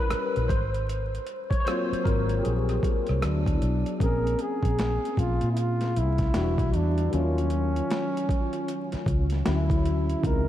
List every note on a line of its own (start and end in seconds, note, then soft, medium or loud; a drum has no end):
0.00 0.51 G3 medium
0.00 0.51 C#4 medium
0.00 0.51 E4 medium
0.00 0.51 A#4 loud
0.00 0.51 B4 loud
0.00 0.51 C#5 loud
0.11 muted fingered electric bass stroke soft
0.11 cross-stick loud
0.11 closed hi-hat medium
0.36 0.51 A#1 medium
0.36 closed hi-hat soft
0.48 1.17 G#1 medium
0.48 1.54 C5 medium
0.48 kick loud
0.48 closed hi-hat medium
0.74 closed hi-hat soft
0.89 closed hi-hat medium
1.15 closed hi-hat soft
1.27 closed hi-hat medium
1.50 1.59 C#5 medium
1.50 kick medium
1.50 closed hi-hat soft
1.60 1.66 C#5 medium
1.65 2.22 F#3 medium
1.65 2.22 A#3 medium
1.65 2.22 C4 medium
1.65 2.22 F4 medium
1.65 2.02 C5 medium
1.65 cross-stick loud
1.65 closed hi-hat medium
1.92 muted fingered electric bass stroke soft
1.92 closed hi-hat medium
2.04 2.39 G#1 loud
2.04 2.39 A#4 medium
2.04 kick medium
2.04 closed hi-hat medium
2.29 closed hi-hat soft
2.38 2.44 G4 medium
2.43 2.79 A#1 medium
2.43 3.57 G#4 medium
2.43 closed hi-hat medium
2.69 cross-stick soft
2.69 closed hi-hat medium
2.83 muted fingered electric bass stroke soft
2.83 kick medium
2.83 closed hi-hat medium
3.07 3.21 C2 medium
3.07 cross-stick soft
3.07 closed hi-hat soft
3.22 3.57 D2 medium
3.22 3.96 F#3 medium
3.22 3.97 B3 soft
3.22 3.97 D4 medium
3.22 3.97 E4 medium
3.22 cross-stick loud
3.22 closed hi-hat medium
3.46 kick medium
3.46 closed hi-hat soft
3.62 3.83 B1 medium
3.62 closed hi-hat medium
3.86 closed hi-hat soft
3.99 4.34 A#1 medium
3.99 6.30 A#3 medium
3.99 6.31 C4 medium
3.99 6.29 C#4 medium
3.99 kick loud
3.99 closed hi-hat medium
4.03 6.31 G#4 medium
4.03 4.43 A#4 loud
4.27 closed hi-hat soft
4.39 5.21 G#4 medium
4.39 closed hi-hat medium
4.63 4.97 A#1 medium
4.63 kick medium
4.63 closed hi-hat soft
4.79 snare loud
4.79 closed hi-hat medium
5.05 closed hi-hat soft
5.17 5.39 A#1 medium
5.17 5.52 F4 medium
5.17 kick medium
5.17 closed hi-hat medium
5.41 5.98 A#2 loud
5.41 closed hi-hat soft
5.53 5.60 E4 medium
5.57 5.99 F4 loud
5.57 closed hi-hat medium
5.81 snare soft
5.81 closed hi-hat medium
5.96 6.30 C2 medium
5.96 6.78 E4 loud
5.96 closed hi-hat medium
6.18 kick medium
6.18 snare soft
6.18 closed hi-hat soft
6.33 6.56 E1 loud
6.33 7.12 E3 medium
6.33 7.12 G3 medium
6.33 7.12 D4 medium
6.33 7.13 F#4 medium
6.33 snare loud
6.33 closed hi-hat medium
6.58 6.71 B1 medium
6.58 kick medium
6.58 closed hi-hat soft
6.74 7.08 E2 medium
6.74 7.16 D4 medium
6.74 closed hi-hat medium
6.98 closed hi-hat soft
7.10 7.80 D#2 loud
7.10 9.40 D#3 medium
7.10 9.41 F#3 medium
7.10 9.42 C#4 medium
7.10 closed hi-hat medium
7.14 9.23 C#4 loud
7.14 9.43 F4 medium
7.38 closed hi-hat soft
7.50 closed hi-hat medium
7.76 closed hi-hat soft
7.90 snare loud
7.90 closed hi-hat medium
8.17 closed hi-hat medium
8.29 kick medium
8.29 closed hi-hat medium
8.53 closed hi-hat soft
8.68 closed hi-hat medium
8.92 muted fingered electric bass stroke soft
8.92 snare soft
8.92 closed hi-hat soft
9.06 9.41 C#2 medium
9.06 kick medium
9.06 closed hi-hat medium
9.30 snare soft
9.30 closed hi-hat soft
9.45 10.14 D2 loud
9.45 10.23 D3 medium
9.45 10.23 F#3 medium
9.45 10.24 C#4 medium
9.45 10.24 E4 medium
9.45 10.28 E4 medium
9.45 snare loud
9.45 closed hi-hat medium
9.70 kick loud
9.70 closed hi-hat medium
9.85 closed hi-hat medium
10.10 closed hi-hat soft
10.22 10.48 C#2 loud
10.22 10.48 C#3 medium
10.22 10.31 E3 soft
10.22 10.48 C4 medium
10.22 kick loud
10.22 closed hi-hat medium
10.26 10.48 F3 medium
10.26 10.48 D#4 medium
10.26 10.48 A#4 loud